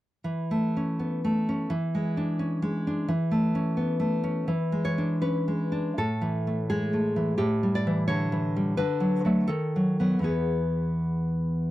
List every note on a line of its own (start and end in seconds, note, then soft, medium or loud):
0.24 1.66 E3 soft
0.51 1.23 A3 soft
0.77 1.48 C#4 soft
0.99 1.71 B3 soft
1.25 1.72 A3 soft
1.49 1.72 C#4 soft
1.70 3.06 E3 soft
1.95 2.61 G#3 soft
2.17 2.86 D4 soft
2.39 3.10 C#4 soft
2.62 3.10 G#3 soft
2.87 3.11 D4 soft
3.08 4.46 E3 soft
3.31 3.98 A3 soft
3.55 4.22 C#4 soft
3.77 4.49 B3 soft
4.00 4.49 A3 soft
4.24 4.49 C#4 soft
4.48 5.92 E3 soft
4.72 5.47 G#3 soft
4.85 5.21 C#5 soft
4.98 5.71 D4 soft
5.22 5.97 C#4 soft
5.22 5.94 B4 soft
5.48 5.97 G#3 soft
5.72 5.97 D4 soft
5.98 7.37 A2 soft
5.98 6.68 A4 medium
6.21 7.15 E3 soft
6.47 6.92 A3 soft
6.70 7.42 G#3 soft
6.70 7.39 G#4 medium
6.93 7.41 A3 soft
7.16 7.38 E3 soft
7.38 8.75 A2 soft
7.38 7.73 G4 soft
7.63 8.55 G3 soft
7.75 8.07 D5 medium
7.87 8.31 E3 soft
8.08 8.77 D3 soft
8.08 8.76 C#5 medium
8.32 8.80 E3 soft
8.56 8.80 G3 soft
8.77 9.48 D3 soft
8.77 9.47 B4 medium
9.00 9.24 F#3 soft
9.25 9.47 F#3 soft
9.25 9.48 A3 soft
9.47 10.19 D#3 soft
9.47 10.20 A4 medium
9.76 9.99 F#3 soft
10.00 10.21 F#3 soft
10.00 10.22 B3 soft
10.19 11.70 E2 soft
10.19 11.71 E3 soft
10.19 11.71 B3 soft
10.24 11.35 G#4 soft